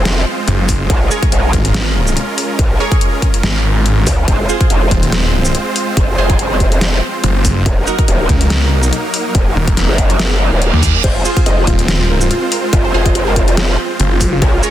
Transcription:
Already playing: wobble bass F1, supersaw synth G#3 C4 F4 C5
0.05 snare, closed hi-hat
0.48 detuned saw bass F#1, closed hi-hat
0.69 kick, open hi-hat, shaker
0.90 wobble bass A#1, supersaw synth C#4 A#4, kick, closed hi-hat
1.11 synth stab G#4 A#4 C#5, shaker
1.23 kick, closed hi-hat
1.32 wobble bass A#1, closed hi-hat
1.53 detuned saw bass G#1, kick, closed hi-hat
1.65 closed hi-hat
1.74 snare, closed hi-hat
2.07 shaker
2.17 closed hi-hat
2.38 open hi-hat
2.59 wobble bass A#1, kick, closed hi-hat
2.80 synth stab G#4 A#4 C#5
2.92 kick, closed hi-hat
3.01 closed hi-hat
3.22 kick, closed hi-hat
3.34 closed hi-hat
3.43 detuned saw bass G#1, snare, closed hi-hat
3.86 closed hi-hat
4.07 wobble bass C#2, kick, open hi-hat, shaker
4.28 wobble bass F1, supersaw synth G#3 C4 F4 C5, kick, closed hi-hat
4.49 synth stab F4 G#4 C5, shaker
4.61 kick, closed hi-hat
4.70 wobble bass F1, closed hi-hat
4.91 detuned saw bass D#1, kick, closed hi-hat
5.03 closed hi-hat
5.12 snare, closed hi-hat
5.45 shaker
5.55 closed hi-hat
5.76 open hi-hat
5.97 wobble bass F1, kick, closed hi-hat
6.18 wobble bass F1, synth stab F4 G#4 C5
6.30 kick, closed hi-hat
6.39 closed hi-hat
6.60 kick, closed hi-hat
6.72 closed hi-hat
6.81 snare, closed hi-hat
7.24 detuned saw bass F#1, closed hi-hat
7.45 kick, open hi-hat, shaker
7.66 wobble bass D#1, supersaw synth F#3 A#3 D#4 A#4, kick, closed hi-hat
7.87 synth stab D#4 F#4 A#4, shaker
7.99 kick, closed hi-hat
8.08 wobble bass D#1, closed hi-hat
8.29 detuned saw bass C#2, kick, closed hi-hat
8.41 closed hi-hat
8.50 snare, closed hi-hat
8.73 detuned saw bass C2
8.83 shaker
8.93 closed hi-hat
9.14 open hi-hat
9.35 wobble bass D#1, kick, closed hi-hat
9.56 detuned saw bass D#1
9.68 kick, closed hi-hat
9.77 snare, closed hi-hat
9.89 wobble bass F#1
9.98 kick, closed hi-hat
10.10 closed hi-hat
10.19 snare, closed hi-hat, reverse cymbal
10.52 wobble bass D#1
10.62 closed hi-hat
10.73 detuned saw bass D#2
10.83 kick, open hi-hat, shaker
11.04 wobble bass F1, supersaw synth G#3 C4 F4 C5, synth pluck C5, kick, closed hi-hat, crash
11.15 synth pluck F4
11.25 synth pluck F4, synth stab F4 G#4 C5, shaker
11.37 synth pluck F4, kick, closed hi-hat
11.46 wobble bass F1, synth pluck D#5, closed hi-hat
11.58 synth pluck F4
11.67 detuned saw bass D#1, synth pluck F4, kick, closed hi-hat
11.79 closed hi-hat
11.88 synth pluck F4, snare, closed hi-hat
12.00 synth pluck F4
12.10 synth pluck A#4
12.21 synth pluck F4, shaker
12.31 synth pluck F4, closed hi-hat
12.43 synth pluck F4
12.52 synth pluck A#4, open hi-hat
12.64 synth pluck F4
12.73 wobble bass F1, synth pluck F4, kick, closed hi-hat
12.85 synth pluck C5
12.94 wobble bass F1, synth stab F4 G#4 C5, synth pluck F4
13.06 synth pluck F4, kick, closed hi-hat
13.15 synth pluck F4, closed hi-hat
13.27 synth pluck A#4
13.36 synth pluck F4, kick, closed hi-hat
13.48 synth pluck F4, closed hi-hat
13.57 synth pluck G#4, snare, closed hi-hat
13.69 synth pluck F4
13.79 synth pluck F4
14.00 detuned saw bass F#1, synth pluck F4, closed hi-hat
14.11 synth pluck F4
14.21 kick, open hi-hat, shaker
14.33 synth pluck F4
14.42 wobble bass A#1, supersaw synth G#3 C#4 F4 A#4, synth pluck C#5, kick, closed hi-hat
14.54 synth pluck F4
14.63 synth pluck F4, synth stab G#4 A#4 C#5, shaker

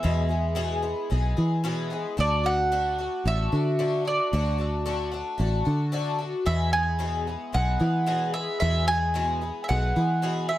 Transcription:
Already playing: mandolin E5
0.03 twelve-string acoustic guitar E2 B2 E3 G#3 B3 G#4, fingered electric bass E2
0.29 twelve-string acoustic guitar E3 G#3 B3 G#4
0.55 twelve-string acoustic guitar E2 B2 E3 G#3 B3 G#4
0.82 twelve-string acoustic guitar E3 G#3 B3 G#4
1.10 fingered electric bass B1, twelve-string acoustic guitar E3 G#3 B3 G#4
1.37 fingered electric bass E3, twelve-string acoustic guitar E3 G#3 B3 G#4
1.64 twelve-string acoustic guitar E2 B2 E3 G#3 B3 G#4
1.90 twelve-string acoustic guitar E3 G#3 B3 G#4
2.17 fingered electric bass D2, twelve-string acoustic guitar D3 A3 D4 F#4, mandolin D5
2.43 twelve-string acoustic guitar A3 D4 F#4, mandolin F#5
2.72 twelve-string acoustic guitar D3 A3 D4 F#4
2.98 twelve-string acoustic guitar A3 D4 F#4
3.25 fingered electric bass A1, twelve-string acoustic guitar D3 A3 D4 F#4, mandolin E5
3.52 fingered electric bass D3, twelve-string acoustic guitar A3 D4 F#4
3.79 twelve-string acoustic guitar D3 A3 D4 F#4
4.05 twelve-string acoustic guitar A3 D4 F#4, mandolin D5
4.33 fingered electric bass D2, twelve-string acoustic guitar D3 A3 D4 F#4
4.58 twelve-string acoustic guitar A3 D4 F#4
4.86 twelve-string acoustic guitar D3 A3 D4 F#4
5.12 twelve-string acoustic guitar A3 D4 F#4
5.38 fingered electric bass A1, twelve-string acoustic guitar D3 A3 D4 F#4
5.65 fingered electric bass D3, twelve-string acoustic guitar A3 D4 F#4
5.92 twelve-string acoustic guitar D3 A3 D4 F#4
6.18 twelve-string acoustic guitar A3 D4 F#4
6.46 twelve-string acoustic guitar E2 B2 E3 G#3 B3 G#4, fingered electric bass E2, mandolin E5
6.73 twelve-string acoustic guitar E3 G#3 B3 G#4, mandolin G#5
6.99 twelve-string acoustic guitar E2 B2 E3 G#3 B3 G#4
7.27 twelve-string acoustic guitar E3 G#3 B3 G#4
7.53 fingered electric bass B1, twelve-string acoustic guitar E3 G#3 B3 G#4, mandolin F#5
7.80 fingered electric bass E3, twelve-string acoustic guitar E3 G#3 B3 G#4
8.06 twelve-string acoustic guitar E2 B2 E3 G#3 B3 G#4
8.34 twelve-string acoustic guitar E3 G#3 B3 G#4, mandolin E5
8.60 twelve-string acoustic guitar E2 B2 E3 G#3 B3 G#4, fingered electric bass E2, mandolin E5
8.87 twelve-string acoustic guitar E3 G#3 B3 G#4, mandolin G#5
9.14 twelve-string acoustic guitar E2 B2 E3 G#3 B3 G#4
9.41 twelve-string acoustic guitar E3 G#3 B3 G#4
9.64 mandolin E5
9.68 fingered electric bass B1, twelve-string acoustic guitar E3 G#3 B3 G#4, mandolin F#5
9.96 fingered electric bass E3, twelve-string acoustic guitar E3 G#3 B3 G#4
10.22 twelve-string acoustic guitar E2 B2 E3 G#3 B3 G#4
10.48 twelve-string acoustic guitar E3 G#3 B3 G#4, mandolin E5

